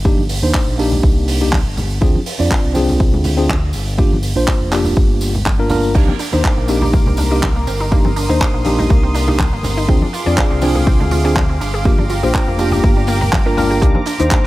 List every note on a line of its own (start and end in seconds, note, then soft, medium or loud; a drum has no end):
0.00 0.38 G1 medium
0.04 0.22 A#3 medium
0.04 0.23 D4 medium
0.04 0.23 D#4 medium
0.04 0.23 G4 medium
0.04 kick loud
0.04 tambourine soft
0.18 high conga medium
0.29 open hi-hat loud
0.29 tambourine medium
0.42 0.52 D#2 medium
0.42 0.76 A#3 medium
0.42 0.76 D4 medium
0.42 0.76 D#4 medium
0.42 0.76 C5 medium
0.42 tambourine soft
0.54 kick medium
0.54 clap loud
0.54 tambourine soft
0.68 0.99 A#1 medium
0.78 1.38 A#3 medium
0.78 1.38 D4 medium
0.78 1.38 D#4 medium
0.78 1.39 G4 medium
0.78 open hi-hat medium
0.78 tambourine medium
0.92 tambourine soft
0.92 low conga medium
1.03 1.61 C2 medium
1.03 kick loud
1.03 tambourine soft
1.28 open hi-hat loud
1.28 tambourine medium
1.41 1.57 A#3 medium
1.41 1.58 D4 medium
1.41 1.58 D#4 medium
1.41 1.58 G4 medium
1.41 tambourine soft
1.41 low conga medium
1.53 kick medium
1.53 clap loud
1.53 tambourine soft
1.53 high conga medium
1.66 1.98 G1 medium
1.77 open hi-hat medium
1.77 tambourine medium
1.77 low conga medium
1.91 tambourine soft
2.01 2.12 D2 medium
2.01 2.19 C4 medium
2.01 2.19 D4 medium
2.01 2.19 F4 medium
2.01 2.20 G#4 medium
2.01 kick loud
2.01 tambourine soft
2.15 high conga medium
2.26 open hi-hat loud
2.26 tambourine medium
2.39 2.48 F2 medium
2.39 2.73 C4 medium
2.39 2.73 D4 medium
2.39 2.73 F4 medium
2.39 2.73 D5 medium
2.39 tambourine medium
2.51 kick loud
2.51 clap loud
2.51 tambourine soft
2.64 3.08 C2 medium
2.74 3.34 C4 medium
2.74 3.35 D4 medium
2.74 3.35 F4 medium
2.74 3.35 G#4 medium
2.74 open hi-hat medium
2.74 tambourine medium
2.74 high conga medium
2.89 tambourine medium
2.89 low conga medium
2.99 kick loud
2.99 tambourine soft
3.13 3.70 D2 medium
3.13 low conga medium
3.24 open hi-hat medium
3.24 tambourine medium
3.24 low conga medium
3.37 3.54 C4 medium
3.37 3.54 D4 medium
3.37 3.54 F4 medium
3.37 3.54 G#4 medium
3.37 tambourine soft
3.49 kick medium
3.49 clap loud
3.49 tambourine soft
3.49 high conga medium
3.73 4.31 G1 medium
3.73 open hi-hat medium
3.73 tambourine medium
3.87 tambourine medium
3.98 4.16 A#3 medium
3.98 4.16 D4 medium
3.98 4.16 F4 medium
3.98 4.16 G4 medium
3.98 kick loud
3.98 tambourine soft
4.13 high conga medium
4.23 open hi-hat loud
4.23 tambourine medium
4.36 4.45 A#1 medium
4.36 4.69 A#3 medium
4.36 4.69 D4 medium
4.36 4.70 F4 medium
4.36 4.70 C5 medium
4.36 tambourine medium
4.48 kick medium
4.48 clap loud
4.48 tambourine soft
4.61 4.93 F1 medium
4.71 5.31 A#3 medium
4.71 5.31 D4 medium
4.71 5.32 F4 medium
4.71 5.32 G4 medium
4.71 clap medium
4.71 open hi-hat medium
4.71 tambourine medium
4.85 tambourine medium
4.85 low conga medium
4.96 5.46 G1 medium
4.96 kick loud
4.96 tambourine soft
5.21 open hi-hat medium
5.21 tambourine loud
5.34 tambourine medium
5.34 low conga medium
5.46 5.91 G1 medium
5.46 kick medium
5.46 clap loud
5.46 tambourine soft
5.46 high conga medium
5.59 5.68 A#3 medium
5.59 5.68 D4 medium
5.59 5.68 F4 medium
5.59 5.68 A#4 medium
5.69 5.92 A#3 medium
5.69 5.92 D4 medium
5.69 5.92 F4 medium
5.69 5.93 A#4 medium
5.69 open hi-hat medium
5.69 tambourine medium
5.69 low conga medium
5.83 tambourine medium
5.94 6.05 C2 medium
5.94 6.12 A#3 medium
5.94 6.03 A#3 loud
5.94 6.13 D4 medium
5.94 6.13 D#4 medium
5.94 6.13 G4 medium
5.94 9.85 A#4 medium
5.94 11.81 C6 medium
5.94 7.90 D6 medium
5.94 kick loud
5.94 crash medium
5.94 tambourine soft
6.08 6.13 C4 medium
6.08 high conga medium
6.19 6.28 D4 medium
6.19 open hi-hat loud
6.19 tambourine medium
6.32 6.42 D#2 medium
6.32 6.66 A#3 medium
6.32 6.66 D4 medium
6.32 6.44 D#4 medium
6.32 6.66 D#4 medium
6.32 6.66 C5 medium
6.32 tambourine medium
6.44 6.49 G4 medium
6.44 kick loud
6.44 clap loud
6.44 tambourine soft
6.58 7.02 A#1 medium
6.58 6.68 A#3 medium
6.68 7.28 A#3 medium
6.68 6.82 C4 medium
6.68 7.28 D4 medium
6.68 7.28 D#4 medium
6.68 7.29 G4 medium
6.68 open hi-hat medium
6.68 tambourine medium
6.82 6.86 D#4 medium
6.82 tambourine soft
6.82 low conga medium
6.93 7.02 A#3 loud
6.93 kick loud
6.93 tambourine soft
7.06 7.63 C2 medium
7.06 7.11 C4 medium
7.06 low conga medium
7.17 7.26 D4 medium
7.17 open hi-hat medium
7.17 tambourine loud
7.17 low conga medium
7.31 7.48 A#3 medium
7.31 7.48 D4 medium
7.31 7.42 D#4 medium
7.31 7.48 D#4 medium
7.31 7.48 G4 medium
7.31 tambourine soft
7.43 7.48 G4 medium
7.43 kick loud
7.43 clap loud
7.43 tambourine soft
7.43 high conga medium
7.56 7.67 A#3 medium
7.67 8.25 G1 medium
7.67 7.80 C4 medium
7.67 open hi-hat medium
7.67 tambourine medium
7.80 7.85 D#4 medium
7.80 tambourine soft
7.91 8.09 A#3 medium
7.91 8.00 A#3 loud
7.91 8.09 D4 medium
7.91 8.10 D#4 medium
7.91 8.10 G4 medium
7.91 9.86 D#6 medium
7.91 kick loud
7.91 tambourine soft
8.05 8.09 C4 medium
8.05 high conga medium
8.16 8.25 D4 medium
8.16 open hi-hat loud
8.16 tambourine medium
8.29 8.38 D#2 medium
8.29 8.63 A#3 medium
8.29 8.63 D4 medium
8.29 8.40 D#4 medium
8.29 8.63 D#4 medium
8.29 8.63 C5 medium
8.29 tambourine medium
8.41 8.46 G4 medium
8.41 kick loud
8.41 clap loud
8.41 tambourine soft
8.54 8.86 A#1 medium
8.54 8.65 A#3 medium
8.65 9.24 A#3 medium
8.65 8.78 C4 medium
8.65 9.25 D4 medium
8.65 9.25 D#4 medium
8.65 9.25 G4 medium
8.65 open hi-hat medium
8.65 tambourine medium
8.65 high conga medium
8.79 8.83 D#4 medium
8.79 tambourine medium
8.79 low conga medium
8.90 9.48 C2 medium
8.90 8.99 A#3 medium
8.90 kick loud
8.90 tambourine soft
9.03 9.08 C4 medium
9.14 9.23 D4 medium
9.14 open hi-hat loud
9.14 tambourine medium
9.28 9.44 A#3 medium
9.28 9.44 D4 medium
9.28 9.39 D#4 medium
9.28 9.45 D#4 medium
9.28 9.45 G4 medium
9.28 tambourine soft
9.28 low conga medium
9.39 9.45 G4 medium
9.39 kick loud
9.39 clap loud
9.39 tambourine soft
9.39 high conga loud
9.53 9.84 G1 medium
9.53 9.64 A#3 medium
9.63 9.77 C4 medium
9.63 open hi-hat medium
9.63 tambourine medium
9.63 low conga medium
9.77 9.82 D#4 medium
9.77 tambourine soft
9.88 9.99 D2 medium
9.88 10.06 C4 medium
9.88 9.97 C4 loud
9.88 10.06 D4 medium
9.88 10.06 F4 medium
9.88 11.83 G#4 medium
9.88 10.06 G#4 medium
9.88 13.78 F5 medium
9.88 14.47 D6 medium
9.88 kick loud
9.88 tambourine soft
10.01 10.06 D4 medium
10.01 high conga medium
10.13 10.22 F4 medium
10.13 open hi-hat loud
10.13 tambourine medium
10.26 10.35 F2 loud
10.26 10.59 C4 medium
10.26 10.60 D4 medium
10.26 10.60 F4 medium
10.26 10.37 G#4 medium
10.26 10.60 D5 medium
10.26 tambourine soft
10.37 10.43 C5 medium
10.37 kick loud
10.37 clap loud
10.37 tambourine soft
10.51 10.95 C2 medium
10.51 10.62 C4 medium
10.61 11.21 C4 medium
10.61 10.75 D4 medium
10.61 11.22 D4 medium
10.61 11.22 F4 medium
10.61 11.22 G#4 medium
10.61 open hi-hat loud
10.61 tambourine medium
10.61 high conga medium
10.75 10.80 G#4 medium
10.75 tambourine soft
10.75 low conga medium
10.87 10.95 C4 loud
10.87 kick loud
10.87 tambourine soft
11.00 11.57 D2 medium
11.00 11.04 D4 medium
11.00 low conga medium
11.11 11.20 F4 medium
11.11 open hi-hat medium
11.11 tambourine medium
11.11 low conga medium
11.24 11.41 C4 medium
11.24 11.41 D4 medium
11.24 11.41 F4 medium
11.24 11.36 G#4 medium
11.24 11.42 G#4 medium
11.24 tambourine medium
11.36 11.41 C5 medium
11.36 kick loud
11.36 clap loud
11.36 tambourine soft
11.36 high conga loud
11.49 11.60 C4 medium
11.61 12.18 G1 medium
11.61 11.73 D4 medium
11.61 open hi-hat medium
11.61 tambourine medium
11.74 11.78 G#4 medium
11.74 tambourine soft
11.85 12.03 A#3 medium
11.85 11.94 A#3 loud
11.85 12.03 D4 medium
11.85 12.03 F4 medium
11.85 13.80 G4 medium
11.85 12.03 G4 medium
11.85 14.47 A#5 medium
11.85 kick loud
11.85 tambourine soft
11.98 12.03 D4 medium
11.98 high conga medium
12.10 12.18 F4 medium
12.10 open hi-hat loud
12.10 tambourine medium
12.23 12.32 A#1 loud
12.23 12.56 A#3 medium
12.23 12.56 D4 medium
12.23 12.57 F4 medium
12.23 12.34 G4 medium
12.23 12.57 C5 medium
12.23 tambourine soft
12.34 12.40 A#4 medium
12.34 kick loud
12.34 clap loud
12.48 12.80 F1 medium
12.48 12.58 A#3 medium
12.58 13.18 A#3 medium
12.58 12.72 D4 medium
12.58 13.18 D4 medium
12.58 13.19 F4 medium
12.58 13.19 G4 medium
12.58 open hi-hat medium
12.58 tambourine medium
12.72 12.77 G4 medium
12.72 tambourine medium
12.72 low conga medium
12.84 13.32 G1 medium
12.84 12.92 A#3 loud
12.84 kick loud
12.84 tambourine soft
12.97 13.01 D4 medium
13.07 13.17 A#3 loud
13.07 open hi-hat medium
13.07 tambourine medium
13.21 13.32 A#4 medium
13.21 tambourine soft
13.21 low conga medium
13.33 13.78 G1 medium
13.33 13.41 F4 medium
13.33 kick loud
13.33 clap loud
13.33 tambourine soft
13.33 high conga loud
13.46 13.55 A#3 medium
13.46 13.55 D4 medium
13.46 13.55 F4 medium
13.46 13.50 A#4 medium
13.46 13.55 A#4 loud
13.57 13.79 A#3 medium
13.57 13.79 D4 medium
13.57 13.79 F4 medium
13.57 13.70 A#4 medium
13.57 13.80 A#4 medium
13.57 open hi-hat medium
13.57 tambourine medium
13.57 low conga medium
13.70 13.78 G4 medium
13.70 tambourine soft
13.82 13.92 C2 loud
13.82 13.99 A#3 medium
13.82 13.90 A#3 loud
13.82 14.00 D4 medium
13.82 14.00 D#4 medium
13.82 14.00 G4 loud
13.82 14.47 C5 medium
13.82 kick loud
13.82 closed hi-hat medium
13.82 tambourine soft
13.82 shaker medium
13.95 13.99 C4 medium
13.95 high conga medium
14.06 14.15 D4 medium
14.06 open hi-hat loud
14.06 tambourine medium
14.06 shaker medium
14.19 14.29 D#2 medium
14.19 14.47 A#3 medium
14.19 14.47 D4 medium
14.19 14.31 D#4 medium
14.19 14.47 D#4 medium
14.19 14.47 C5 medium
14.19 closed hi-hat medium
14.19 tambourine soft
14.19 shaker soft
14.31 14.36 G4 medium
14.31 kick loud
14.31 clap loud
14.31 closed hi-hat medium
14.31 shaker medium